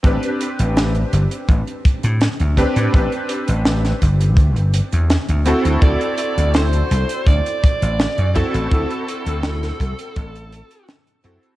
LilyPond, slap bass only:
\new Staff \with { instrumentName = "Slap bass" } { \clef bass \time 4/4 \key a \dorian \tempo 4 = 83 a,,16 r8 a,,8 r16 g,,16 r16 a,,16 r8 a,16 r16 d,16 r16 a,16 | a,,16 r8 a,,8 r16 g,,8 d,16 g,,16 r16 e,16 r16 d,16 r16 d,16 | d,16 r8 d,8 r16 c,16 r16 d,16 r8 a,,16 r16 fis,16 r16 a,,16 | d,16 r8 d,8 r16 c,16 r16 a,,8 r4 fis,16 r16 | }